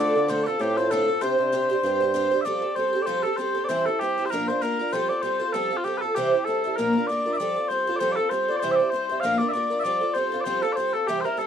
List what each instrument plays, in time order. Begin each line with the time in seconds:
Already playing: bassoon D3, accordion D5, bagpipes D5
0.00 twelve-string acoustic guitar D3 A3 C4 F4 A4
0.15 bassoon D3, twelve-string acoustic guitar C4 F4 A4
0.28 twelve-string acoustic guitar D3 A3 C4 F4 A4, accordion C5, bagpipes C5
0.43 accordion A4, twelve-string acoustic guitar A4, bagpipes A4 D5
0.48 twelve-string acoustic guitar C4 F4
0.59 bassoon A2, twelve-string acoustic guitar A3 C4 F4 A4, accordion G4, bagpipes G4
0.77 twelve-string acoustic guitar C4 F4 A4, accordion C5, bagpipes C5
0.90 twelve-string acoustic guitar D3 A3 C4 F4 A4, accordion A4, bagpipes A4
1.08 twelve-string acoustic guitar C4 F4 A4
1.21 bassoon C3, twelve-string acoustic guitar C4 D4 G4 C5, accordion C5, bagpipes C5
1.38 bassoon C3, twelve-string acoustic guitar D4 G4 C5
1.52 twelve-string acoustic guitar C4 D4 G4 C5
1.70 twelve-string acoustic guitar D4 G4 C5
1.83 bassoon G2, twelve-string acoustic guitar C4 D4 G4 C5
2.00 twelve-string acoustic guitar D4 G4 C5
2.14 twelve-string acoustic guitar C4 D4 G4 C5
2.31 twelve-string acoustic guitar D4 G4 C5
2.41 twelve-string acoustic guitar F3, bagpipes D5 E5, accordion D5
2.46 twelve-string acoustic guitar G3 C4 G4 A4
2.62 twelve-string acoustic guitar C4 G4 A4, accordion D5
2.75 twelve-string acoustic guitar G3 C4 G4 A4, bagpipes C5, accordion C5
2.93 twelve-string acoustic guitar C4 G4 A4
3.02 bagpipes C5 D5
3.07 twelve-string acoustic guitar F3 G3 C4 G4 A4, accordion C5
3.23 twelve-string acoustic guitar C4 G4 A4, bagpipes A4, accordion A4
3.37 twelve-string acoustic guitar G3 C4 G4, bagpipes C5, accordion C5
3.41 twelve-string acoustic guitar A4
3.55 twelve-string acoustic guitar C4 G4 A4
3.64 bagpipes D5
3.68 twelve-string acoustic guitar C3 E3 G3 C4 E4 C5, bagpipes C5, accordion C5
3.86 twelve-string acoustic guitar G3 C4 E4 C5, bagpipes A4, accordion A4
3.99 twelve-string acoustic guitar G3 C4 E4, bagpipes G4, accordion G4
4.04 twelve-string acoustic guitar C5
4.18 twelve-string acoustic guitar G3 C4 E4 C5
4.26 bagpipes C5
4.30 twelve-string acoustic guitar A#2 F3 A#3 D4 F4, bagpipes A#4, accordion A#4
4.34 twelve-string acoustic guitar A#4
4.48 twelve-string acoustic guitar A#3 D4 F4 A#4, bagpipes C5, accordion C5
4.61 twelve-string acoustic guitar A#3 D4 F4 A#4, bagpipes A#4, accordion A#4
4.79 twelve-string acoustic guitar A#3 D4 F4 A#4
4.92 twelve-string acoustic guitar F3 G3 C4 F4 A4, bagpipes C5, accordion C5
5.09 twelve-string acoustic guitar C4 F4 A4, bagpipes D5
5.22 twelve-string acoustic guitar G3 C4 F4, bagpipes C5, accordion C5
5.26 twelve-string acoustic guitar A4
5.39 twelve-string acoustic guitar C4 F4 A4
5.53 twelve-string acoustic guitar F3 G3 C4 F4 A4, bagpipes A4, accordion A4
5.71 twelve-string acoustic guitar C4 F4 A4
5.77 bagpipes F4, accordion F4
5.84 twelve-string acoustic guitar G3 C4 F4 A4, bagpipes G4, accordion G4
5.98 bagpipes A4 B4
6.02 twelve-string acoustic guitar C4 F4 A4, accordion A4
6.15 twelve-string acoustic guitar C3 E3 G3 C4 E4 C5, bagpipes G4, accordion G4
6.33 twelve-string acoustic guitar G3 C4 E4 C5
6.45 twelve-string acoustic guitar G3 C4, bagpipes A4, accordion A4
6.49 twelve-string acoustic guitar E4 C5
6.64 twelve-string acoustic guitar G3 C4 E4 C5
6.76 twelve-string acoustic guitar A#2 F3 A#3 D4 F4, bagpipes A#4, accordion A#4
6.80 twelve-string acoustic guitar A#4
6.95 twelve-string acoustic guitar A#3 D4 F4 A#4
7.07 twelve-string acoustic guitar A#3 D4, bagpipes D5, accordion D5
7.12 twelve-string acoustic guitar F4 A#4
7.26 twelve-string acoustic guitar A#3 D4 F4 A#4
7.33 bagpipes E5
7.37 twelve-string acoustic guitar F3 G3 C4, bagpipes D5, accordion D5
7.41 twelve-string acoustic guitar F4 A4
7.56 twelve-string acoustic guitar C4 F4 A4, accordion D5
7.68 twelve-string acoustic guitar G3 C4 F4, bagpipes C5, accordion C5
7.73 twelve-string acoustic guitar A4
7.87 twelve-string acoustic guitar C4 F4 A4
7.96 bagpipes C5 D5
8.00 twelve-string acoustic guitar F3 G3 C4 F4 A4, accordion C5
8.12 bagpipes A4 D5
8.17 twelve-string acoustic guitar C4 F4 A4, accordion A4
8.28 twelve-string acoustic guitar G3 C4, accordion A#4 C5, bagpipes C5
8.33 twelve-string acoustic guitar F4 A4
8.48 twelve-string acoustic guitar C4 F4 A4, accordion D5
8.56 bagpipes C5 D5
8.62 twelve-string acoustic guitar C3 E3 G3 C4 E4 C5, accordion C5
8.71 bagpipes E5
8.75 twelve-string acoustic guitar C5, bagpipes D5
8.80 twelve-string acoustic guitar G3 C4 E4
8.90 twelve-string acoustic guitar G3 C4, bagpipes C5, accordion C5
8.94 twelve-string acoustic guitar E4 C5
9.09 twelve-string acoustic guitar G3 C4 E4 C5
9.20 twelve-string acoustic guitar A#2 F3 A#3, bagpipes F5, accordion F5
9.24 twelve-string acoustic guitar D4 F4 A#4
9.38 twelve-string acoustic guitar D4 F4 A#4, bagpipes D5, accordion D5
9.43 twelve-string acoustic guitar A#3
9.49 bagpipes D5 E5
9.53 twelve-string acoustic guitar A#3 D4 F4 A#4, accordion D5
9.70 twelve-string acoustic guitar A#3 D4 F4 A#4
9.80 bagpipes D5 E5
9.84 twelve-string acoustic guitar F3 G3 C4 F4 A4, accordion D5
10.01 twelve-string acoustic guitar C4 F4 A4
10.13 twelve-string acoustic guitar G3 C4 F4, bagpipes C5, accordion C5
10.18 twelve-string acoustic guitar A4
10.25 accordion C5
10.32 twelve-string acoustic guitar C4 F4 A4, accordion C5
10.41 bagpipes C5 D5
10.45 twelve-string acoustic guitar F3 G3 C4 F4 A4, accordion C5
10.62 twelve-string acoustic guitar C4 F4 A4, bagpipes A4, accordion A4
10.72 bagpipes C5 D5, accordion C5
10.77 twelve-string acoustic guitar G3 C4 F4 A4
10.93 twelve-string acoustic guitar C4 F4 A4, bagpipes A4, accordion A4
11.07 twelve-string acoustic guitar C3 E3 G3 C4 E4 C5, accordion G4, bagpipes G4
11.21 accordion A#4, bagpipes A#4 C5, twelve-string acoustic guitar C5
11.25 twelve-string acoustic guitar G3 C4 E4
11.37 twelve-string acoustic guitar G3 C4 E4 C5, accordion A4, bagpipes A4